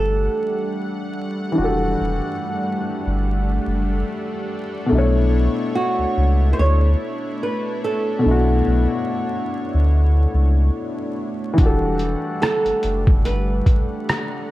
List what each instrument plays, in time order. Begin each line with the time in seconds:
Already playing: sub bass G1, upright piano E3 D4 G4 A4 F#5, analog synth pad G3 A3 D4 F#5, nylon-string guitar A4
1.52 upright piano E3 D4
1.58 sub bass E1, upright piano F#4 G4
1.64 upright piano A4
2.00 sub bass E1
3.06 sub bass G1
3.67 sub bass F#1
4.86 upright piano B2 A3
4.91 sub bass B1, upright piano D4 E4, analog synth pad E4 C#5
4.98 upright piano C#5
5.75 nylon-string guitar F#4
5.98 sub bass C#2
6.17 sub bass C#2
6.53 nylon-string guitar C5
6.59 sub bass D2, nylon-string guitar C#5
7.43 nylon-string guitar B4
7.84 nylon-string guitar A4
8.19 upright piano B2 A3
8.25 sub bass B1, upright piano D4 E4
8.31 upright piano F#4
8.67 sub bass B1
9.74 sub bass D2
10.34 sub bass C#2
11.54 upright piano E3 D4
11.58 sub bass E1, analog synth pad G3 A3 F#5, upright piano F#4, kick, closed hi-hat
11.63 upright piano G4 A4
11.99 closed hi-hat
12.42 nylon-string guitar A4, cross-stick, closed hi-hat
12.65 sub bass F#1, closed hi-hat
12.83 sub bass F#1, closed hi-hat
13.07 kick
13.25 sub bass G1, nylon-string guitar B4, closed hi-hat
13.66 kick, closed hi-hat
14.09 cross-stick, closed hi-hat